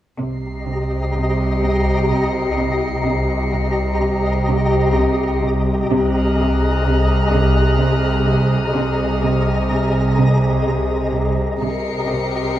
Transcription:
0.19 3.01 C2 medium
0.19 3.01 C2 soft
0.19 3.01 C3 soft
0.19 0.48 C3 soft
0.19 3.02 G4 soft
0.19 3.01 D#5 soft
0.19 3.01 A#5 soft
0.19 5.40 C7 soft
0.67 0.96 C3 soft
1.15 1.44 C3 soft
1.15 5.40 C#7 soft
1.63 1.91 C3 soft
2.11 2.39 C3 soft
2.58 2.86 C3 soft
3.05 5.87 C2 soft
3.05 5.87 C2 medium
3.05 5.87 C3 soft
3.05 3.34 C3 soft
3.05 5.87 G4 soft
3.05 5.87 D#5 soft
3.05 5.87 A#5 soft
3.53 3.82 C3 soft
4.01 4.29 C3 soft
4.49 4.77 C3 soft
4.96 5.25 C3 soft
5.44 5.72 C3 soft
5.91 8.73 C2 soft
5.91 8.73 C2 medium
5.91 8.73 C3 soft
5.91 6.20 C3 medium
5.91 8.75 G#4 soft
5.91 8.73 D#5 medium
5.91 8.73 A#5 soft
5.91 11.11 D#6 soft
5.91 10.16 F6 soft
5.91 9.21 F#6 soft
6.39 6.68 C3 soft
6.87 7.15 C3 soft
7.34 7.63 C3 medium
7.82 8.10 C3 soft
8.29 8.58 C3 soft
8.76 11.38 C2 soft
8.76 11.59 C2 medium
8.76 11.38 C3 soft
8.76 9.05 C3 medium
8.76 11.58 G#4 soft
8.76 11.58 D#5 soft
8.76 11.58 A#5 soft
9.24 9.53 C3 soft
9.72 10.00 C3 soft
10.19 10.47 C3 soft
10.67 10.95 C3 soft
11.14 11.43 C3 soft
11.61 12.59 C2 medium
11.61 12.54 C2 soft
11.61 12.59 C3 soft
11.61 11.91 C3 soft
11.61 12.59 G4 soft
11.61 12.59 A#4 soft
11.61 12.59 D#5 soft
11.61 12.59 A#5 soft
11.61 12.59 C7 soft
11.61 12.59 C#7 soft
12.10 12.38 C3 soft

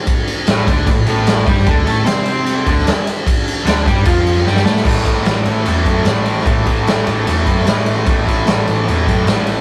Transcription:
0.07 kick loud
0.07 ride loud
0.27 ride medium
0.47 0.66 A1 loud
0.47 0.66 A2 medium
0.47 0.67 A3 medium
0.47 snare loud
0.47 ride loud
0.67 0.86 D2 medium
0.67 0.86 D3 medium
0.67 0.87 D4 loud
0.67 kick loud
0.67 ride medium
0.87 1.05 A1 medium
0.87 1.03 A2 medium
0.87 kick loud
0.87 ride loud
1.06 1.44 A1 loud
1.06 1.46 A2 medium
1.06 1.47 A3 medium
1.06 ride medium
1.27 snare loud
1.27 ride loud
1.46 1.65 G2 loud
1.46 1.66 G3 medium
1.46 1.66 G4 loud
1.46 kick loud
1.46 ride medium
1.59 snare soft
1.66 1.86 D2 medium
1.66 1.86 D3 loud
1.66 1.87 D4 loud
1.66 kick loud
1.66 ride loud
1.85 2.06 A2 loud
1.85 2.04 A3 medium
1.85 2.05 A4 loud
1.85 ride medium
2.05 2.62 C3 loud
2.05 2.65 C4 medium
2.05 2.65 C5 loud
2.05 snare loud
2.05 ride loud
2.25 ride medium
2.46 ride loud
2.66 2.85 D2 loud
2.66 2.85 D3 medium
2.66 2.86 D4 medium
2.66 kick loud
2.66 ride medium
2.79 snare soft
2.87 snare loud
2.87 ride loud
3.07 ride medium
3.27 kick loud
3.27 ride loud
3.48 ride medium
3.65 3.84 D2 loud
3.65 3.85 D3 medium
3.65 3.85 D4 loud
3.65 snare loud
3.65 ride loud
3.85 4.05 G2 medium
3.85 4.05 G3 medium
3.85 4.05 G4 medium
3.85 kick loud
3.85 ride medium
4.05 4.43 F2 medium
4.05 4.45 F3 loud
4.05 4.45 F4 loud
4.05 kick loud
4.05 ride loud
4.27 ride medium
4.37 snare soft
4.45 4.64 G2 loud
4.45 4.64 G3 medium
4.45 4.65 G4 loud
4.45 snare medium
4.56 snare medium
4.64 4.84 A2 medium
4.64 4.84 A3 medium
4.64 4.85 A4 loud
4.64 snare loud
4.77 snare medium
4.82 5.04 A1 medium
4.82 5.23 A2 loud
4.82 5.07 E3 loud
4.82 5.03 A3 loud
4.82 kick loud
4.82 crash loud
5.04 5.25 A1 medium
5.04 5.25 E3 medium
5.04 5.26 A3 medium
5.04 kick medium
5.04 ride medium
5.23 5.45 A1 loud
5.23 5.64 A2 medium
5.23 5.48 E3 medium
5.23 5.43 A3 medium
5.23 snare loud
5.23 ride medium
5.43 5.65 A1 medium
5.43 5.67 A3 medium
5.43 ride medium
5.48 5.66 E3 medium
5.64 5.85 E2 medium
5.64 6.04 A2 loud
5.64 5.88 E3 loud
5.64 5.85 A3 loud
5.64 ride loud
5.85 6.05 F#2 loud
5.85 6.06 E3 soft
5.85 6.08 A3 medium
5.85 kick medium
5.85 ride medium
6.04 6.44 A1 loud
6.04 6.42 A2 medium
6.04 6.45 E3 medium
6.04 6.46 A3 medium
6.04 snare loud
6.04 ride loud
6.26 ride medium
6.38 snare soft
6.43 6.65 A1 medium
6.43 6.84 A2 loud
6.43 6.67 E3 loud
6.43 kick loud
6.43 ride loud
6.47 6.63 A3 loud
6.64 6.85 A1 medium
6.64 6.88 A3 medium
6.64 kick medium
6.64 ride medium
6.68 6.86 E3 medium
6.84 7.05 A1 medium
6.84 7.24 A2 medium
6.84 7.08 E3 medium
6.84 ride loud
6.88 7.04 A3 medium
6.88 snare loud
7.04 7.25 A1 medium
7.04 7.28 A3 medium
7.04 ride medium
7.09 7.26 E3 medium
7.24 7.46 E2 medium
7.24 7.65 A2 loud
7.24 7.49 E3 loud
7.24 ride loud
7.29 7.44 A3 loud
7.45 7.65 F#2 medium
7.45 7.69 A3 medium
7.45 kick medium
7.45 ride medium
7.49 7.68 E3 soft
7.59 snare soft
7.65 8.04 A1 loud
7.65 8.05 A2 medium
7.65 8.07 E3 medium
7.65 snare loud
7.65 ride loud
7.70 8.08 A3 medium
7.86 ride medium
8.06 8.25 A1 medium
8.06 8.45 A2 medium
8.06 8.29 E3 loud
8.06 8.25 A3 loud
8.06 kick loud
8.06 ride loud
8.25 8.45 A1 medium
8.25 8.47 E3 medium
8.25 8.49 A3 medium
8.25 kick medium
8.25 ride medium
8.45 8.66 A1 loud
8.45 8.84 A2 medium
8.45 8.68 E3 medium
8.45 8.64 A3 medium
8.45 snare loud
8.45 ride medium
8.65 8.86 A1 medium
8.65 8.89 A3 medium
8.65 ride medium
8.69 8.87 E3 medium
8.84 9.06 E2 medium
8.84 9.25 A2 loud
8.84 9.07 E3 loud
8.84 ride loud
8.89 9.03 A3 loud
9.03 9.27 E3 medium
9.03 9.29 A3 medium
9.03 kick medium
9.08 9.26 F#2 loud
9.08 ride medium
9.25 9.61 A1 loud
9.25 9.61 A2 medium
9.25 9.61 E3 medium
9.25 9.61 A3 medium
9.25 snare loud
9.25 ride loud
9.47 ride medium

